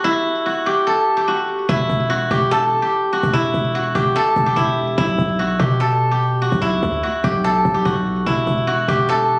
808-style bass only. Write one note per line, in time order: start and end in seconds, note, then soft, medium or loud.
1.69 1.89 E1 loud
1.90 2.29 E1 loud
2.31 2.80 E1 loud
3.23 3.53 E1 loud
3.54 3.93 E1 loud
3.95 4.15 E1 loud
4.36 4.56 E1 loud
4.57 4.96 E1 loud
4.98 5.18 B1 loud
5.18 5.58 B1 loud
5.60 6.48 B2 loud
6.52 6.82 B1 loud
6.83 7.03 D2 loud
7.24 7.63 B1 loud
7.65 7.85 B1 loud
7.86 8.25 B1 loud
8.27 8.46 E1 loud
8.47 8.87 E1 loud
8.88 9.38 E1 loud